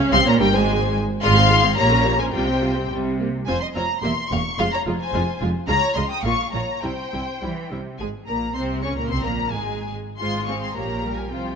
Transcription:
Already playing: viola section C#4
0.11 double bass section C2, cello section C3, viola section C4, violin section F5 C6
0.26 cello section A#2, viola section A#3, violin section C#5 A#5
0.39 double bass section G1, cello section G2, viola section G3, violin section A#4 G5
0.53 double bass section G#1, cello section G#2, viola section G#3, violin section C5 G#5
1.22 double bass section G#1, cello section G#2, viola section G#3 F4, violin section F5 C6
1.36 viola section C4 G#4
1.50 viola section G#3 F4
1.63 viola section C4 G#4
1.77 double bass section A#1, cello section A#2, viola section A#3 G4, violin section C#5 A#5
1.91 viola section C#4 A#4
2.05 viola section A#3 G4
2.19 viola section C#4 A#4, violin section C5 G#5
2.33 double bass section C2, cello section C3, viola section G3 F4, violin section C5 G5
2.47 viola section C4 G4
2.62 viola section G3 F4
2.76 viola section C4 G4
2.91 double bass section C2, cello section C3, viola section G3
3.19 viola section A#3
3.46 double bass section F1, cello section F2, viola section C4 F4, violin section C5 G#5
3.60 violin section D#5 C6
3.74 double bass section F1, cello section F2, viola section C4 F4, violin section C#5 A#5
4.02 double bass section E1, cello section E2, viola section A#3 G4, violin section E5 C6
4.30 double bass section E1, cello section E2, viola section A#3 G4, violin section F5 C#6
4.58 double bass section F1, cello section F2, viola section G#3 F4, violin section F5 C6
4.72 violin section C#5 A#5
4.86 double bass section F1, cello section F2, viola section G#3 F4
5.00 violin section C5 G#5
5.13 double bass section F1, cello section F2, viola section G#3 F4
5.41 double bass section F1, cello section F2, viola section G#3 F4
5.67 double bass section C#2, cello section C#3, viola section G#3 F4, violin section C#5 A#5
5.95 double bass section C#2, cello section C#3, viola section G#3 F4, violin section D#5 C6
6.09 violin section G5 D#6
6.23 double bass section A#1, cello section A#2, viola section A#3 F4, violin section F5 C#6
6.53 double bass section A#1, cello section A#2, viola section A#3 F4, violin section C#5 A#5
6.82 double bass section C2, cello section C3, viola section G3 E4, violin section C5 G5
7.13 double bass section C2, cello section C3, viola section G3 E4
7.42 double bass section C2, cello section E3, viola section G3 E4
7.71 double bass section C2, cello section C3, viola section G3 E4
7.99 double bass section G#1, cello section G#2, viola section G#3, violin section G#4 G#5
8.27 double bass section A#1, cello section A#2, viola section A#3, violin section A#4 A#5
8.54 double bass section C2, cello section C3, viola section C4, violin section C5 C6
8.83 double bass section C#2, cello section C#3, viola section C#4, violin section C#5 C#6
8.96 cello section A#2, viola section A#3, violin section A#4 A#5
9.09 double bass section C2, cello section C3, viola section C4, violin section C5 C6
9.23 double bass section A#1, cello section A#2, viola section A#3, violin section A#4 A#5
9.50 double bass section G#1, cello section G#2, viola section G#3, violin section G#4 G#5
10.19 double bass section G#1, cello section G#2, viola section G#3 F4, violin section F4 C5 C6
10.46 viola section C4 G#4, violin section G#4 F5 C#6
10.62 violin section C6
10.74 double bass section A#1, cello section A#2, viola section A#3 G4, violin section A#4 C#5 A#5
11.03 viola section G3 A#4, violin section G4 A#4
11.17 violin section G#5
11.31 double bass section C2, cello section C3, viola section F3 F4, violin section F4 C5 G5

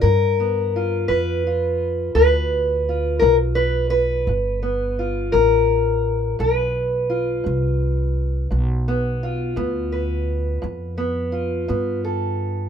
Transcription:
Already playing: steel-string acoustic guitar B3
0.01 upright bass G2, steel-string acoustic guitar G2 A#4
0.40 steel-string acoustic guitar B3
0.76 steel-string acoustic guitar F4
1.08 upright bass F2, steel-string acoustic guitar G2 B4
1.47 steel-string acoustic guitar F4
2.15 upright bass D2, steel-string acoustic guitar G2 B4
2.89 steel-string acoustic guitar F4
3.19 upright bass B1, steel-string acoustic guitar G2 A#4
3.55 steel-string acoustic guitar B4
3.90 steel-string acoustic guitar B4
4.27 upright bass G1, steel-string acoustic guitar G2
4.63 steel-string acoustic guitar B3
4.99 steel-string acoustic guitar F4
5.32 upright bass A1, steel-string acoustic guitar G2 A#4
6.39 upright bass B1, steel-string acoustic guitar G2 B4
7.10 steel-string acoustic guitar F4
7.44 upright bass C2, steel-string acoustic guitar G2
8.51 upright bass B1, steel-string acoustic guitar G2
8.88 steel-string acoustic guitar B3
9.23 steel-string acoustic guitar F4
9.56 upright bass D2, steel-string acoustic guitar G2 B3
9.92 steel-string acoustic guitar B4
10.62 upright bass F2, steel-string acoustic guitar G2
10.98 steel-string acoustic guitar B3
11.32 steel-string acoustic guitar F4
11.68 steel-string acoustic guitar G2 B3, upright bass G2
12.05 steel-string acoustic guitar A4

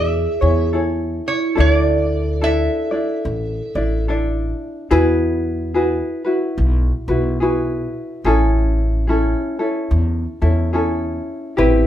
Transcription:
Already playing: upright bass E2, ukulele E4 G#4, vibraphone G#4, resonator guitar played with a steel bar E5
0.41 upright bass E2, ukulele E4 G#4 C#5
0.73 ukulele E4 G#4 A4 C#5
1.27 vibraphone E4, resonator guitar played with a steel bar C#5
1.55 upright bass D2, ukulele D4 E4 A4 D5
1.60 resonator guitar played with a steel bar C#5
1.71 resonator guitar played with a steel bar D5
2.41 ukulele D4 E4 A4 D5, vibraphone A4, resonator guitar played with a steel bar E5
2.91 ukulele D4 E4 D5
3.25 upright bass A1
3.75 upright bass A1, ukulele D4 E4 D5
4.08 ukulele D4 E4 A4 D5
4.91 upright bass E2, ukulele E4 F#4 G#4 B4
5.74 ukulele E4 F#4 G#4 B4
6.25 ukulele E4 F#4 B4
6.58 upright bass B1
7.08 upright bass B1, ukulele E4 F#4 B4
7.40 ukulele E4 F#4 G#4 B4
8.24 upright bass A1, ukulele C#4 E4 G#4 A4
9.07 ukulele C#4 E4 G#4 A4
9.59 ukulele C#4 E4 A4
9.91 upright bass E2
10.41 upright bass E2, ukulele C#4 E4 A4
10.73 ukulele C#4 E4 G#4 A4
11.57 upright bass A1, ukulele C4 E4 G4 B4

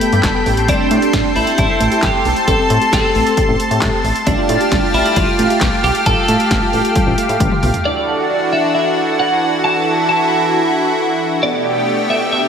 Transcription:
Already playing: analog polysynth A3 B3 G4, clean electric guitar A4, analog synth pad A4 G5 B5
0.01 synth pluck A3, closed hi-hat
0.13 analog synth bass G2, synth pluck G4, closed hi-hat
0.23 analog synth bass G1, synth pluck G3, kick, snare, clap, closed hi-hat
0.35 synth pluck B3
0.46 analog synth bass A1, synth pluck A3, analog polysynth A3 C4 G4, analog synth pad A4 C6, open hi-hat
0.57 closed hi-hat
0.68 synth pluck G3, clean electric guitar D4, kick, closed hi-hat
0.79 synth pluck C4
0.91 analog synth bass A2, synth pluck A3, closed hi-hat
1.02 synth pluck G4, closed hi-hat
1.13 analog synth bass A1, synth pluck G3, kick, snare, closed hi-hat
1.25 synth pluck C4
1.36 analog synth bass A1, synth pluck A3, clean electric guitar E4, open hi-hat
1.47 synth pluck G4, closed hi-hat
1.58 analog synth bass A1, synth pluck G3, clean electric guitar E4, kick, closed hi-hat
1.69 synth pluck C4
1.80 analog synth bass A1, synth pluck A3, closed hi-hat
1.92 synth pluck G4, closed hi-hat
2.03 analog synth bass A1, synth pluck G3, clean electric guitar G4, kick, snare, clap, closed hi-hat
2.14 synth pluck C4
2.25 analog synth bass B1, synth pluck A3, analog synth pad A5, open hi-hat
2.36 closed hi-hat
2.48 analog synth bass A1, synth pluck G3, clean electric guitar A4, kick, closed hi-hat
2.59 synth pluck C4
2.70 analog synth bass A2, synth pluck A3, closed hi-hat
2.81 synth pluck G4, closed hi-hat
2.93 analog synth bass A1, synth pluck G3, clean electric guitar A4, kick, snare, closed hi-hat
3.04 synth pluck C4
3.15 analog synth bass A1, synth pluck A3, open hi-hat
3.26 synth pluck G4, closed hi-hat
3.37 synth pluck G3, kick, closed hi-hat
3.48 analog synth bass A1, synth pluck C4
3.60 synth pluck A3, closed hi-hat
3.71 analog synth bass A2, synth pluck G4, closed hi-hat
3.82 analog synth bass A2, synth pluck G3, kick, snare, clap, closed hi-hat
3.93 synth pluck C4
4.04 analog synth bass A1, synth pluck A3, open hi-hat
4.16 closed hi-hat
4.27 analog synth bass A1, synth pluck G3, analog polysynth A3 F4 G4, clean electric guitar D4, analog synth pad G4 F5, kick, closed hi-hat
4.38 synth pluck F4
4.49 analog synth bass A2, synth pluck A3, closed hi-hat
4.61 synth pluck G4, closed hi-hat
4.72 analog synth bass A1, synth pluck G3, kick, snare, closed hi-hat
4.83 synth pluck F4
4.94 analog synth bass A1, synth pluck A3, clean electric guitar E4, open hi-hat
5.05 synth pluck G4, closed hi-hat
5.16 analog synth bass A1, synth pluck G3, clean electric guitar F4, kick, closed hi-hat
5.28 synth pluck F4
5.39 analog synth bass A1, synth pluck A3, closed hi-hat
5.50 synth pluck G4, closed hi-hat
5.61 analog synth bass B1, synth pluck G3, kick, snare, clap, closed hi-hat
5.72 synth pluck F4
5.83 analog synth bass B1, synth pluck A3, clean electric guitar G4, open hi-hat
5.95 closed hi-hat
6.06 analog synth bass A1, synth pluck G3, clean electric guitar A4, kick, closed hi-hat
6.17 synth pluck F4
6.28 analog synth bass A2, synth pluck A3, closed hi-hat
6.40 synth pluck G4, closed hi-hat
6.51 analog synth bass A1, synth pluck G3, kick, snare, closed hi-hat
6.62 synth pluck F4
6.73 analog synth bass A1, synth pluck A3, open hi-hat
6.84 synth pluck G4, closed hi-hat
6.95 synth pluck G3, kick, closed hi-hat
7.07 analog synth bass A1, synth pluck F4
7.18 synth pluck A3, closed hi-hat
7.29 analog synth bass A2, synth pluck G4, closed hi-hat
7.40 analog synth bass A1, synth pluck G3, kick, closed hi-hat, high tom
7.52 synth pluck F4, mid tom
7.63 analog synth bass B1, synth pluck A3, mid tom, open hi-hat
7.74 closed hi-hat, floor tom
7.85 analog synth pad E3 D4 F#4, analog polysynth D4 E4 F#4 A4, clean electric guitar D5
8.53 clean electric guitar E5
8.75 clean electric guitar E5
9.19 clean electric guitar F#5
9.64 analog synth pad E4, clean electric guitar A5
10.09 clean electric guitar A5
11.43 analog synth pad B2 A3 G4, analog polysynth B3 D4 G4 A4, clean electric guitar D5
12.10 clean electric guitar E5
12.32 clean electric guitar E5

